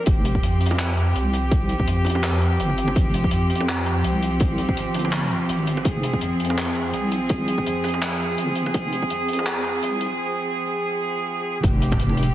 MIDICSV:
0, 0, Header, 1, 4, 480
1, 0, Start_track
1, 0, Key_signature, -4, "minor"
1, 0, Tempo, 361446
1, 92, Time_signature, 4, 2, 24, 8
1, 16394, End_track
2, 0, Start_track
2, 0, Title_t, "Cello section"
2, 0, Program_c, 0, 48
2, 90, Note_on_c, 0, 53, 75
2, 90, Note_on_c, 0, 60, 71
2, 90, Note_on_c, 0, 67, 86
2, 7744, Note_off_c, 0, 67, 0
2, 7767, Note_on_c, 0, 68, 91
2, 15397, Note_off_c, 0, 53, 0
2, 15397, Note_off_c, 0, 60, 0
2, 15423, Note_off_c, 0, 68, 0
2, 15451, Note_on_c, 0, 53, 81
2, 15452, Note_on_c, 0, 67, 93
2, 15454, Note_on_c, 0, 60, 74
2, 16394, Note_off_c, 0, 53, 0
2, 16394, Note_off_c, 0, 60, 0
2, 16394, Note_off_c, 0, 67, 0
2, 16394, End_track
3, 0, Start_track
3, 0, Title_t, "Wobble bass"
3, 0, Program_c, 1, 39
3, 90, Note_on_c, 1, 29, 103
3, 554, Note_off_c, 1, 29, 0
3, 567, Note_on_c, 1, 41, 96
3, 1512, Note_off_c, 1, 41, 0
3, 1527, Note_on_c, 1, 36, 93
3, 2472, Note_off_c, 1, 36, 0
3, 2485, Note_on_c, 1, 41, 98
3, 3431, Note_off_c, 1, 41, 0
3, 3447, Note_on_c, 1, 31, 95
3, 3912, Note_off_c, 1, 31, 0
3, 3929, Note_on_c, 1, 29, 99
3, 4393, Note_off_c, 1, 29, 0
3, 4407, Note_on_c, 1, 41, 96
3, 5352, Note_off_c, 1, 41, 0
3, 5367, Note_on_c, 1, 36, 94
3, 6312, Note_off_c, 1, 36, 0
3, 6327, Note_on_c, 1, 31, 99
3, 7272, Note_off_c, 1, 31, 0
3, 7289, Note_on_c, 1, 32, 95
3, 7753, Note_off_c, 1, 32, 0
3, 7772, Note_on_c, 1, 29, 100
3, 8235, Note_off_c, 1, 29, 0
3, 8250, Note_on_c, 1, 41, 94
3, 9193, Note_off_c, 1, 41, 0
3, 9208, Note_on_c, 1, 36, 99
3, 10152, Note_off_c, 1, 36, 0
3, 10171, Note_on_c, 1, 41, 102
3, 11114, Note_off_c, 1, 41, 0
3, 11132, Note_on_c, 1, 31, 94
3, 11595, Note_off_c, 1, 31, 0
3, 11609, Note_on_c, 1, 29, 100
3, 12073, Note_off_c, 1, 29, 0
3, 12088, Note_on_c, 1, 41, 102
3, 13032, Note_off_c, 1, 41, 0
3, 13049, Note_on_c, 1, 36, 98
3, 13530, Note_off_c, 1, 36, 0
3, 15453, Note_on_c, 1, 29, 106
3, 16394, Note_off_c, 1, 29, 0
3, 16394, End_track
4, 0, Start_track
4, 0, Title_t, "Drums"
4, 81, Note_on_c, 9, 42, 77
4, 91, Note_on_c, 9, 36, 109
4, 214, Note_off_c, 9, 42, 0
4, 224, Note_off_c, 9, 36, 0
4, 331, Note_on_c, 9, 42, 82
4, 464, Note_off_c, 9, 42, 0
4, 464, Note_on_c, 9, 36, 56
4, 576, Note_on_c, 9, 42, 84
4, 597, Note_off_c, 9, 36, 0
4, 709, Note_off_c, 9, 42, 0
4, 805, Note_on_c, 9, 42, 57
4, 873, Note_off_c, 9, 42, 0
4, 873, Note_on_c, 9, 42, 49
4, 882, Note_off_c, 9, 42, 0
4, 882, Note_on_c, 9, 42, 78
4, 943, Note_on_c, 9, 45, 78
4, 1015, Note_off_c, 9, 42, 0
4, 1047, Note_on_c, 9, 42, 93
4, 1050, Note_on_c, 9, 39, 117
4, 1076, Note_off_c, 9, 45, 0
4, 1180, Note_off_c, 9, 42, 0
4, 1183, Note_off_c, 9, 39, 0
4, 1292, Note_on_c, 9, 42, 46
4, 1424, Note_off_c, 9, 42, 0
4, 1538, Note_on_c, 9, 42, 90
4, 1670, Note_off_c, 9, 42, 0
4, 1773, Note_on_c, 9, 42, 80
4, 1906, Note_off_c, 9, 42, 0
4, 2011, Note_on_c, 9, 36, 121
4, 2014, Note_on_c, 9, 42, 78
4, 2144, Note_off_c, 9, 36, 0
4, 2147, Note_off_c, 9, 42, 0
4, 2246, Note_on_c, 9, 42, 68
4, 2379, Note_off_c, 9, 42, 0
4, 2384, Note_on_c, 9, 36, 58
4, 2492, Note_on_c, 9, 42, 79
4, 2517, Note_off_c, 9, 36, 0
4, 2624, Note_off_c, 9, 42, 0
4, 2719, Note_on_c, 9, 45, 64
4, 2737, Note_on_c, 9, 42, 70
4, 2786, Note_off_c, 9, 42, 0
4, 2786, Note_on_c, 9, 42, 75
4, 2852, Note_off_c, 9, 45, 0
4, 2858, Note_on_c, 9, 45, 82
4, 2918, Note_off_c, 9, 42, 0
4, 2964, Note_on_c, 9, 42, 86
4, 2969, Note_on_c, 9, 39, 124
4, 2991, Note_off_c, 9, 45, 0
4, 3097, Note_off_c, 9, 42, 0
4, 3102, Note_off_c, 9, 39, 0
4, 3209, Note_on_c, 9, 42, 51
4, 3342, Note_off_c, 9, 42, 0
4, 3451, Note_on_c, 9, 42, 86
4, 3581, Note_on_c, 9, 45, 36
4, 3584, Note_off_c, 9, 42, 0
4, 3691, Note_on_c, 9, 42, 70
4, 3714, Note_off_c, 9, 45, 0
4, 3822, Note_on_c, 9, 45, 69
4, 3824, Note_off_c, 9, 42, 0
4, 3930, Note_on_c, 9, 42, 76
4, 3931, Note_on_c, 9, 36, 120
4, 3955, Note_off_c, 9, 45, 0
4, 4063, Note_off_c, 9, 42, 0
4, 4064, Note_off_c, 9, 36, 0
4, 4171, Note_on_c, 9, 42, 79
4, 4304, Note_off_c, 9, 42, 0
4, 4304, Note_on_c, 9, 36, 61
4, 4398, Note_on_c, 9, 42, 87
4, 4437, Note_off_c, 9, 36, 0
4, 4531, Note_off_c, 9, 42, 0
4, 4645, Note_on_c, 9, 42, 66
4, 4720, Note_off_c, 9, 42, 0
4, 4720, Note_on_c, 9, 42, 67
4, 4788, Note_on_c, 9, 45, 73
4, 4853, Note_off_c, 9, 42, 0
4, 4896, Note_on_c, 9, 42, 80
4, 4901, Note_on_c, 9, 39, 118
4, 4921, Note_off_c, 9, 45, 0
4, 5029, Note_off_c, 9, 42, 0
4, 5034, Note_off_c, 9, 39, 0
4, 5129, Note_on_c, 9, 42, 56
4, 5262, Note_off_c, 9, 42, 0
4, 5370, Note_on_c, 9, 42, 81
4, 5503, Note_off_c, 9, 42, 0
4, 5612, Note_on_c, 9, 42, 73
4, 5745, Note_off_c, 9, 42, 0
4, 5842, Note_on_c, 9, 42, 76
4, 5850, Note_on_c, 9, 36, 118
4, 5975, Note_off_c, 9, 42, 0
4, 5983, Note_off_c, 9, 36, 0
4, 6083, Note_on_c, 9, 42, 68
4, 6216, Note_off_c, 9, 42, 0
4, 6224, Note_on_c, 9, 36, 61
4, 6336, Note_on_c, 9, 42, 90
4, 6357, Note_off_c, 9, 36, 0
4, 6469, Note_off_c, 9, 42, 0
4, 6566, Note_on_c, 9, 42, 69
4, 6578, Note_on_c, 9, 45, 57
4, 6629, Note_off_c, 9, 42, 0
4, 6629, Note_on_c, 9, 42, 69
4, 6704, Note_off_c, 9, 45, 0
4, 6704, Note_on_c, 9, 45, 77
4, 6761, Note_off_c, 9, 42, 0
4, 6807, Note_on_c, 9, 39, 114
4, 6809, Note_on_c, 9, 42, 81
4, 6837, Note_off_c, 9, 45, 0
4, 6939, Note_off_c, 9, 39, 0
4, 6942, Note_off_c, 9, 42, 0
4, 7056, Note_on_c, 9, 42, 55
4, 7189, Note_off_c, 9, 42, 0
4, 7294, Note_on_c, 9, 42, 84
4, 7421, Note_on_c, 9, 45, 36
4, 7427, Note_off_c, 9, 42, 0
4, 7534, Note_on_c, 9, 42, 71
4, 7553, Note_off_c, 9, 45, 0
4, 7665, Note_on_c, 9, 45, 64
4, 7667, Note_off_c, 9, 42, 0
4, 7767, Note_on_c, 9, 42, 81
4, 7772, Note_on_c, 9, 36, 113
4, 7798, Note_off_c, 9, 45, 0
4, 7900, Note_off_c, 9, 42, 0
4, 7905, Note_off_c, 9, 36, 0
4, 8012, Note_on_c, 9, 42, 74
4, 8145, Note_off_c, 9, 42, 0
4, 8146, Note_on_c, 9, 36, 58
4, 8251, Note_on_c, 9, 42, 89
4, 8278, Note_off_c, 9, 36, 0
4, 8384, Note_off_c, 9, 42, 0
4, 8496, Note_on_c, 9, 42, 58
4, 8561, Note_off_c, 9, 42, 0
4, 8561, Note_on_c, 9, 42, 66
4, 8634, Note_on_c, 9, 45, 73
4, 8693, Note_off_c, 9, 42, 0
4, 8733, Note_on_c, 9, 42, 89
4, 8742, Note_on_c, 9, 39, 107
4, 8767, Note_off_c, 9, 45, 0
4, 8865, Note_off_c, 9, 42, 0
4, 8875, Note_off_c, 9, 39, 0
4, 8968, Note_on_c, 9, 42, 47
4, 9101, Note_off_c, 9, 42, 0
4, 9211, Note_on_c, 9, 42, 78
4, 9344, Note_off_c, 9, 42, 0
4, 9451, Note_on_c, 9, 42, 70
4, 9584, Note_off_c, 9, 42, 0
4, 9686, Note_on_c, 9, 42, 74
4, 9693, Note_on_c, 9, 36, 113
4, 9818, Note_off_c, 9, 42, 0
4, 9825, Note_off_c, 9, 36, 0
4, 9933, Note_on_c, 9, 42, 71
4, 10066, Note_off_c, 9, 42, 0
4, 10066, Note_on_c, 9, 36, 58
4, 10179, Note_on_c, 9, 42, 85
4, 10199, Note_off_c, 9, 36, 0
4, 10312, Note_off_c, 9, 42, 0
4, 10410, Note_on_c, 9, 45, 55
4, 10416, Note_on_c, 9, 42, 63
4, 10471, Note_off_c, 9, 42, 0
4, 10471, Note_on_c, 9, 42, 83
4, 10543, Note_off_c, 9, 45, 0
4, 10543, Note_on_c, 9, 45, 75
4, 10604, Note_off_c, 9, 42, 0
4, 10653, Note_on_c, 9, 42, 82
4, 10654, Note_on_c, 9, 39, 111
4, 10676, Note_off_c, 9, 45, 0
4, 10785, Note_off_c, 9, 42, 0
4, 10787, Note_off_c, 9, 39, 0
4, 10888, Note_on_c, 9, 42, 46
4, 11021, Note_off_c, 9, 42, 0
4, 11130, Note_on_c, 9, 42, 88
4, 11263, Note_off_c, 9, 42, 0
4, 11263, Note_on_c, 9, 45, 32
4, 11362, Note_on_c, 9, 42, 72
4, 11396, Note_off_c, 9, 45, 0
4, 11494, Note_off_c, 9, 42, 0
4, 11504, Note_on_c, 9, 45, 67
4, 11610, Note_on_c, 9, 42, 82
4, 11611, Note_on_c, 9, 36, 115
4, 11637, Note_off_c, 9, 45, 0
4, 11743, Note_off_c, 9, 42, 0
4, 11744, Note_off_c, 9, 36, 0
4, 11853, Note_on_c, 9, 42, 65
4, 11985, Note_on_c, 9, 36, 57
4, 11986, Note_off_c, 9, 42, 0
4, 12090, Note_on_c, 9, 42, 83
4, 12117, Note_off_c, 9, 36, 0
4, 12223, Note_off_c, 9, 42, 0
4, 12330, Note_on_c, 9, 42, 61
4, 12392, Note_off_c, 9, 42, 0
4, 12392, Note_on_c, 9, 42, 68
4, 12468, Note_on_c, 9, 45, 77
4, 12525, Note_off_c, 9, 42, 0
4, 12567, Note_on_c, 9, 39, 121
4, 12575, Note_on_c, 9, 42, 83
4, 12601, Note_off_c, 9, 45, 0
4, 12700, Note_off_c, 9, 39, 0
4, 12708, Note_off_c, 9, 42, 0
4, 12807, Note_on_c, 9, 42, 49
4, 12940, Note_off_c, 9, 42, 0
4, 13051, Note_on_c, 9, 42, 87
4, 13183, Note_off_c, 9, 42, 0
4, 13290, Note_on_c, 9, 42, 71
4, 13422, Note_off_c, 9, 42, 0
4, 15451, Note_on_c, 9, 45, 48
4, 15454, Note_on_c, 9, 36, 114
4, 15462, Note_on_c, 9, 42, 77
4, 15584, Note_off_c, 9, 45, 0
4, 15586, Note_off_c, 9, 36, 0
4, 15595, Note_off_c, 9, 42, 0
4, 15697, Note_on_c, 9, 42, 83
4, 15827, Note_on_c, 9, 36, 58
4, 15829, Note_off_c, 9, 42, 0
4, 15834, Note_on_c, 9, 45, 91
4, 15932, Note_on_c, 9, 42, 98
4, 15959, Note_off_c, 9, 36, 0
4, 15967, Note_off_c, 9, 45, 0
4, 16062, Note_on_c, 9, 45, 51
4, 16065, Note_off_c, 9, 42, 0
4, 16166, Note_on_c, 9, 42, 57
4, 16194, Note_off_c, 9, 45, 0
4, 16237, Note_off_c, 9, 42, 0
4, 16237, Note_on_c, 9, 42, 71
4, 16370, Note_off_c, 9, 42, 0
4, 16394, End_track
0, 0, End_of_file